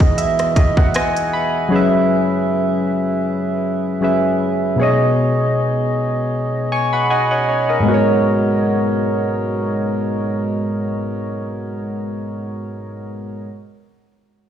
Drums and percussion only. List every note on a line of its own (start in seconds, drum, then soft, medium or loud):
0.00 kick medium
0.18 closed hi-hat medium
0.39 cross-stick medium
0.39 closed hi-hat soft
0.56 kick medium
0.56 closed hi-hat medium
0.77 kick medium
0.94 cross-stick loud
0.94 closed hi-hat medium
1.16 closed hi-hat soft